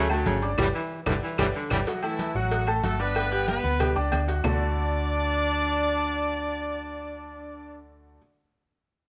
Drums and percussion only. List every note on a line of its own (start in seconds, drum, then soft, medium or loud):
0.10 high conga soft
0.10 low agogo loud
0.10 claves medium
0.10 maracas soft
0.26 cowbell medium
0.26 high conga loud
0.26 maracas medium
0.42 low agogo medium
0.42 maracas soft
0.58 cowbell medium
0.58 low conga loud
0.58 high timbale loud
0.58 claves loud
0.58 maracas loud
1.06 cowbell loud
1.06 low conga loud
1.06 high timbale loud
1.06 claves loud
1.06 maracas loud
1.38 cowbell loud
1.38 low conga loud
1.38 high timbale loud
1.38 claves loud
1.38 maracas loud
1.70 cowbell loud
1.70 low conga loud
1.70 high timbale medium
1.70 claves loud
1.70 maracas loud
1.87 cowbell loud
1.87 high conga soft
1.87 maracas medium
2.03 high conga soft
2.03 low agogo loud
2.03 claves medium
2.03 maracas soft
2.19 cowbell medium
2.19 high conga medium
2.19 maracas medium
2.35 high conga soft
2.35 maracas soft
2.51 cowbell loud
2.51 high conga soft
2.51 low agogo medium
2.51 maracas medium
2.67 high conga soft
2.67 low agogo loud
2.67 claves medium
2.67 maracas soft
2.83 cowbell medium
2.83 high conga medium
2.83 maracas medium
3.00 low agogo medium
3.00 maracas soft
3.15 cowbell loud
3.15 high conga soft
3.15 low agogo loud
3.15 claves medium
3.15 maracas medium
3.32 high conga soft
3.32 maracas soft
3.48 cowbell medium
3.48 high conga medium
3.48 low agogo medium
3.48 maracas medium
3.64 high conga soft
3.64 maracas soft
3.80 cowbell loud
3.80 high conga soft
3.80 low conga medium
3.80 low agogo loud
3.80 claves medium
3.80 maracas medium
3.96 high conga soft
3.96 low agogo medium
3.96 maracas soft
4.12 cowbell medium
4.12 high conga soft
4.12 low timbale medium
4.12 low agogo loud
4.12 claves medium
4.12 maracas medium
4.29 cowbell medium
4.29 maracas soft
4.44 low bongo medium
4.44 low conga loud
4.44 low timbale loud
4.44 claves loud
4.44 maracas loud